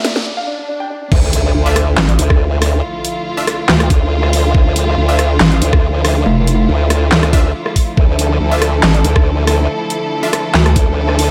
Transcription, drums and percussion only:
0.05 snare loud
0.05 closed hi-hat medium
0.16 snare medium
1.12 kick loud
1.12 crash loud
1.33 closed hi-hat medium
1.76 cross-stick medium
1.76 closed hi-hat medium
1.97 snare loud
1.97 clap medium
2.09 closed hi-hat soft
2.19 closed hi-hat medium
2.30 kick loud
2.30 cross-stick medium
2.62 cross-stick medium
2.62 open hi-hat medium
3.05 closed hi-hat medium
3.47 cross-stick medium
3.47 closed hi-hat medium
3.69 cross-stick medium
3.69 snare loud
3.69 clap medium
3.80 cross-stick medium
3.80 closed hi-hat soft
3.90 kick loud
3.90 closed hi-hat medium
4.23 cross-stick medium
4.33 open hi-hat medium
4.55 kick loud
4.76 closed hi-hat medium
5.19 cross-stick medium
5.19 closed hi-hat medium
5.40 snare loud
5.40 clap medium
5.52 closed hi-hat soft
5.62 closed hi-hat medium
5.73 kick loud
5.73 cross-stick medium
6.05 cross-stick medium
6.05 open hi-hat medium
6.47 closed hi-hat medium
6.90 cross-stick medium
6.90 closed hi-hat medium
7.12 cross-stick medium
7.12 snare loud
7.12 clap medium
7.23 cross-stick medium
7.23 closed hi-hat soft
7.33 kick loud
7.33 closed hi-hat medium
7.66 cross-stick medium
7.76 kick medium
7.76 open hi-hat medium
7.97 kick loud
8.19 closed hi-hat medium
8.62 cross-stick medium
8.62 closed hi-hat medium
8.83 snare loud
8.83 clap medium
8.94 closed hi-hat soft
9.04 closed hi-hat medium
9.16 kick loud
9.16 cross-stick medium
9.47 cross-stick medium
9.47 open hi-hat medium
9.90 closed hi-hat medium
10.33 cross-stick medium
10.33 closed hi-hat medium
10.54 cross-stick medium
10.54 snare loud
10.54 clap medium
10.66 cross-stick medium
10.66 closed hi-hat soft
10.76 kick loud
10.76 closed hi-hat medium
11.09 cross-stick medium
11.19 open hi-hat loud

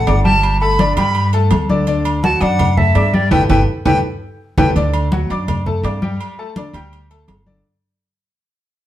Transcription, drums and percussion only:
0.07 high conga soft
0.07 low timbale medium
0.07 low agogo medium
0.25 high conga medium
0.43 high conga soft
0.43 low agogo loud
0.61 high conga soft
0.79 high conga loud
0.79 low timbale medium
0.79 low agogo medium
0.97 high conga soft
0.97 low agogo loud
1.15 high conga soft
1.15 low agogo medium
1.33 high conga soft
1.33 low agogo medium
1.51 high conga medium
1.51 low timbale medium
1.51 low agogo loud
1.70 high conga medium
1.87 high conga soft
1.87 low agogo medium
2.05 high conga soft
2.05 low agogo loud
2.23 high conga loud
2.23 low timbale medium
2.41 high conga soft
2.41 low agogo medium
2.59 high conga soft
2.59 low conga medium
2.59 low agogo loud
2.77 high conga soft
2.77 low conga medium
2.95 low timbale medium
2.95 low agogo medium
3.14 high conga loud
3.32 low conga loud
3.32 high timbale loud
3.50 low conga loud
3.50 high timbale loud
3.86 low conga loud
3.86 high timbale loud
4.58 low conga loud
4.58 high timbale loud
4.76 high conga soft
4.76 low agogo medium
4.94 high conga soft
4.94 low agogo loud
5.12 high conga loud
5.12 low timbale medium
5.30 high conga soft
5.30 low agogo medium
5.48 high conga soft
5.48 low conga medium
5.48 low agogo loud
5.66 high conga soft
5.66 low conga medium
5.84 high conga soft
5.84 low timbale loud
5.84 low agogo medium
6.02 high conga loud
6.20 high conga soft
6.20 low agogo loud
6.38 high conga soft
6.56 high conga loud
6.56 low timbale medium
6.56 low agogo medium
6.74 low agogo loud
6.93 high conga soft
6.93 low agogo medium
7.11 high conga soft
7.11 low agogo medium
7.28 high conga medium
7.28 low timbale loud
7.28 low agogo loud
7.47 high conga medium

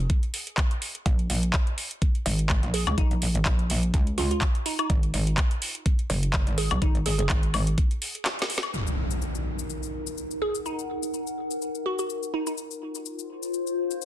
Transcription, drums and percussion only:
0.10 kick loud
0.10 closed hi-hat medium
0.23 closed hi-hat soft
0.34 open hi-hat loud
0.47 closed hi-hat soft
0.57 kick loud
0.57 clap loud
0.57 closed hi-hat medium
0.71 closed hi-hat soft
0.82 open hi-hat loud
0.95 closed hi-hat soft
1.06 kick loud
1.06 closed hi-hat medium
1.19 closed hi-hat soft
1.30 open hi-hat loud
1.43 closed hi-hat soft
1.53 kick loud
1.53 clap loud
1.53 closed hi-hat medium
1.67 closed hi-hat soft
1.78 open hi-hat loud
1.91 closed hi-hat soft
2.02 kick loud
2.02 closed hi-hat medium
2.15 closed hi-hat soft
2.26 open hi-hat loud
2.39 closed hi-hat soft
2.50 kick loud
2.50 clap loud
2.50 closed hi-hat medium
2.63 closed hi-hat soft
2.74 open hi-hat loud
2.87 closed hi-hat soft
2.87 high woodblock medium
2.98 kick loud
2.98 closed hi-hat medium
3.11 closed hi-hat soft
3.22 open hi-hat loud
3.35 closed hi-hat medium
3.46 kick loud
3.46 clap loud
3.46 closed hi-hat medium
3.59 closed hi-hat soft
3.70 open hi-hat loud
3.83 closed hi-hat medium
3.94 kick loud
3.94 closed hi-hat medium
4.07 closed hi-hat soft
4.18 open hi-hat loud
4.31 closed hi-hat medium
4.41 kick loud
4.41 clap loud
4.41 closed hi-hat medium
4.55 closed hi-hat soft
4.66 open hi-hat loud
4.79 closed hi-hat medium
4.79 high woodblock medium
4.90 kick loud
4.90 closed hi-hat medium
5.03 closed hi-hat soft
5.14 open hi-hat loud
5.27 closed hi-hat medium
5.37 kick loud
5.37 clap loud
5.37 closed hi-hat medium
5.51 closed hi-hat soft
5.62 open hi-hat loud
5.75 closed hi-hat medium
5.86 kick loud
5.86 closed hi-hat medium
5.99 closed hi-hat soft
6.10 open hi-hat medium
6.23 closed hi-hat medium
6.33 kick loud
6.33 clap loud
6.33 closed hi-hat medium
6.47 closed hi-hat soft
6.58 open hi-hat loud
6.71 closed hi-hat medium
6.71 high woodblock medium
6.82 kick loud
6.82 closed hi-hat medium
6.95 closed hi-hat soft
7.06 open hi-hat loud
7.19 closed hi-hat medium
7.29 kick loud
7.29 clap loud
7.29 closed hi-hat medium
7.43 closed hi-hat soft
7.54 open hi-hat loud
7.54 high woodblock medium
7.67 closed hi-hat medium
7.78 kick loud
7.78 closed hi-hat medium
7.91 closed hi-hat soft
8.02 open hi-hat medium
8.15 closed hi-hat medium
8.25 snare medium
8.25 clap loud
8.25 closed hi-hat medium
8.39 snare medium
8.39 closed hi-hat soft
8.50 open hi-hat loud
8.58 snare loud
8.63 closed hi-hat medium
8.63 high woodblock medium
8.74 shaker soft
8.87 shaker soft
9.11 shaker medium
9.22 shaker soft
9.35 shaker soft
9.59 shaker medium
9.70 shaker medium
9.83 shaker soft
10.07 shaker medium
10.18 shaker soft
10.31 shaker soft
10.55 shaker medium
10.66 shaker medium
10.79 shaker soft
11.03 shaker medium
11.14 shaker soft
11.27 shaker soft
11.51 shaker medium
11.62 shaker soft
11.75 shaker soft
11.99 shaker medium
12.10 shaker soft
12.23 shaker soft
12.47 shaker medium
12.58 shaker soft
12.71 shaker soft
12.95 shaker medium
13.06 shaker soft
13.19 shaker soft
13.43 shaker medium
13.54 shaker soft
13.67 shaker soft
13.91 shaker medium
14.02 shaker soft

